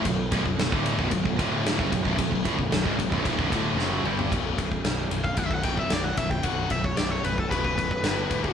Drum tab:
RD |x-x-x-x-x-x-x-x-|x-x-x-x-x-x-----|x-x-x-x-x-x-x-x-|x-x-x-x-x-x-x-x-|
SD |----o-------o---|----o-------o---|----o-------o---|----o-------o---|
T2 |----------------|--------------o-|----------------|----------------|
FT |----------------|---------------o|----------------|----------------|
BD |o-oo-o-oooo--ooo|oooo-oooooo-----|o-oo---ooooo--oo|o-oo---ooooo--oo|